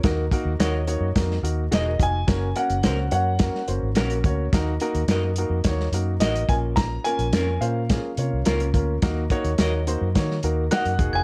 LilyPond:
<<
  \new Staff \with { instrumentName = "Glockenspiel" } { \time 4/4 \key ees \dorian \tempo 4 = 107 r1 | r1 | r1 | r1 |
r2. ges'''8. aes'''16 | }
  \new Staff \with { instrumentName = "Grand piano" } { \time 4/4 \key ees \dorian r2. ees''8 aes''8~ | aes''8 ges''4 ges''4 r4. | r2. ees''8 aes''8 | bes''8 aes''4 f''4. r4 |
r2. ges''8. aes''16 | }
  \new Staff \with { instrumentName = "Clean electric guitar" } { \time 4/4 \key ees \dorian r4 <ges' bes' ees''>8 r4. <ges' bes' ees''>8 r8 | r4 <des' ges' bes'>8 r4. <des' ges' bes'>8 r8 | r4 <ges' bes' ees''>8 r4. <ges' bes' ees''>8 r8 | r4 <des' f' bes'>8 r4. <des' f' bes'>8 r8 |
r4 <ges' bes' ees''>8 r4. <ges' bes' ees''>8 r8 | }
  \new Staff \with { instrumentName = "Upright piano" } { \time 4/4 \key ees \dorian <bes ees' ges' bes'>8 <bes ees' ges' bes'>8 <bes ees' ges' des''>8 <bes ees' ges' des''>8 <bes ees' ges' bes'>8 <bes ees' ges' bes'>8 <bes ees' ges' aes'>8 <bes ees' ges' bes'>8 | <bes des' ges' bes'>8 <bes des' ges' bes'>8 <bes des' ges' c''>8 <bes des' ges' des''>8 <bes des' ges' bes'>8 <bes des' ges' c''>8 <bes des' ges' bes'>8 <bes des' ges' des''>8 | <bes ees' ges' bes'>8 <bes ees' ges' bes'>8 <bes ees' ges' bes'>8 <bes ees' ges' bes'>8 <bes ees' ges' des''>8 <bes ees' ges' bes'>8 <bes ees' ges' bes'>8 <bes des' f' bes'>8~ | <bes des' f' bes'>8 <bes des' f' bes'>8 <bes des' f' bes'>8 <bes des' f' c''>8 <bes des' f' aes'>8 <bes des' f' des''>8 <bes des' f' bes'>8 <bes des' f' bes'>8 |
<bes ees' ges' bes'>8 <bes ees' ges' des''>8 <bes ees' ges' des''>8 <bes ees' ges' c''>8 <bes ees' ges' des''>8 <bes ees' ges' bes'>8 <bes ees' ges' bes'>8 <bes ees' ges' aes'>8 | }
  \new Staff \with { instrumentName = "Fingered electric bass" } { \clef bass \time 4/4 \key ees \dorian ees,8 r16 ees,16 ees,8. ges,16 f,8 ees,8 fes,,8 f,,8 | ges,,8 r16 ges,,16 des,8 ges,8. r16 ges,,16 aes,,16 bes,,8 d,8 | ees,8 r16 ees,16 ges,8. f,16 ees,8 ges,8 a,,8 bes,,8~ | bes,,8 r16 bes,,16 f,8 bes,8. r16 c16 c,16 des,8 d,8 |
ees,8 r16 ees,16 ees,8. ges,16 ees8 ees,8 r16 ges,16 fes,,16 f,,16 | }
  \new DrumStaff \with { instrumentName = "Drums" } \drummode { \time 4/4 <hh bd sn>8 <hh bd>8 <hh sn>8 hh8 <hh bd sn>16 sn16 hh8 <hh sn>8 <hh bd>8 | <hh bd sn>8 hh16 hh16 <hh sn>8 hh8 <hh bd sn>16 sn16 hh8 <hh sn>16 hh16 <hh bd>8 | <hh bd sn>8 hh16 hh16 <hh sn>8 hh8 <hh bd sn>16 sn16 hh8 <hh sn>16 hh16 <hh bd>8 | <hh bd sn>8 hh16 hh16 <hh sn>8 hh8 <hh bd sn>8 hh8 <hh sn>16 hh16 <hh bd>8 |
<hh bd sn>8 <hh bd>16 hh16 <hh sn>8 hh8 <hh bd sn>16 sn16 hh8 <hh sn>16 hh16 <hh bd>8 | }
>>